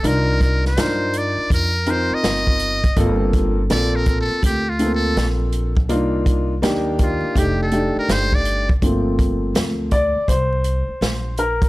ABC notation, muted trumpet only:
X:1
M:4/4
L:1/16
Q:"Swing 16ths" 1/4=82
K:Gm
V:1 name="Muted trumpet"
B3 c3 d2 B2 c e4- e- | e z3 (3d2 B2 A2 (3G2 F2 A2- A z3 | z6 F2 G A2 B c d2 z | z16 |]